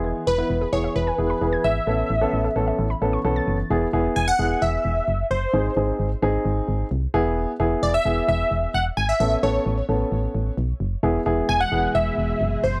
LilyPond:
<<
  \new Staff \with { instrumentName = "Analog polysynth" } { \time 4/4 \key e \major \tempo 4 = 131 r8 b'4 cis''8 b'4. e''8~ | e''2. r4 | r4 gis''16 fis''8. e''4. c''8~ | c''4 r2. |
r4 d''16 e''8. e''4 fis''8 gis''16 e''16 | e''8 cis''4 r2 r8 | r4 gis''16 fis''8. e''4. c''8 | }
  \new Staff \with { instrumentName = "Grand piano" } { \time 4/4 \key e \major <b e' gis'>8 r16 <b e' b'>8 r16 <b e' gis'>8. r16 <b e' gis'>16 r16 <b e' gis'>8. r16 | <b cis' a'>8 r16 <b cis' a'>8 r16 <b cis' a'>8. r16 <b cis' a'>16 r16 <b cis' a'>8. r16 | <b e' gis'>16 r16 <b e' gis'>8. r16 <b e' gis'>4. r4 | <bis dis' gis'>16 r16 <bis dis' gis'>8. r16 <bis dis' gis'>4. r8 <b e' gis'>8~ |
<b e' gis'>16 r16 <b e' gis'>8. r16 <b e' gis'>4. r4 | <b cis' a'>16 r16 <b cis' a'>8. r16 <b cis' a'>4. r4 | <b e' gis'>16 r16 <b e' gis'>8. r16 <b e' gis'>4. r4 | }
  \new Staff \with { instrumentName = "String machine" } { \clef bass \time 4/4 \key e \major r1 | r1 | r1 | r1 |
r1 | r1 | <b, e gis e' gis'>1 | }
  \new Staff \with { instrumentName = "Synth pluck" } { \clef bass \time 4/4 \key e \major e16 r16 e16 r8 gis'16 e16 e''16 e16 gis''16 e16 b''16 e16 gis'''16 e16 r16 | e16 r16 e16 r8 a'16 e16 e''16 e16 b''16 e16 cis'''16 e16 a'''16 e16 r16 | r1 | r1 |
r1 | r1 | r1 | }
  \new Staff \with { instrumentName = "FM bass" } { \clef bass \time 4/4 \key e \major e,,8 e,,8 e,,8 e,,8 e,,8 e,,8 e,,8 gis,,8 | a,,8 a,,8 a,,8 a,,8 a,,8 a,,8 b,,8 fis,,8 | e,,8 e,,8 e,,8 e,,8 e,,8 e,,8 fis,,8 fis,,8 | gis,,8 gis,,8 gis,,8 gis,,8 gis,,8 gis,,8 bis,,8 e,,8~ |
e,,8 e,,8 e,,8 e,,8 e,,8 e,,8 e,,8 gis,,8 | a,,8 a,,8 a,,8 a,,8 a,,8 a,,8 b,,8 fis,,8 | e,,8 e,,8 e,,8 e,,8 e,,8 e,,8 fis,,8 fis,,8 | }
>>